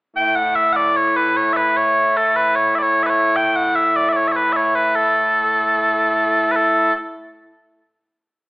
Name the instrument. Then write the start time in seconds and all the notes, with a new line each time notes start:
bagpipes
0.16 A2 A3 E4 G5
0.35 F#5
0.55 E5
0.73 D5 F#5
0.96 C#5
1.17 B4
1.37 C#5
1.53 B4 E5
1.77 C#5
2.17 A4
2.36 B4
2.56 C#5
2.75 D5 E5
2.82 C#5
3.03 B4 E5
3.10 C#5
3.36 G5
3.56 F#5
3.76 E5
3.96 D5
4.09 D5 E5
4.16 C#5
4.28 E5
4.32 C#5
4.36 B4
4.53 C#5 E5
4.75 B4
4.96 A4
6.52 B4
6.56 A4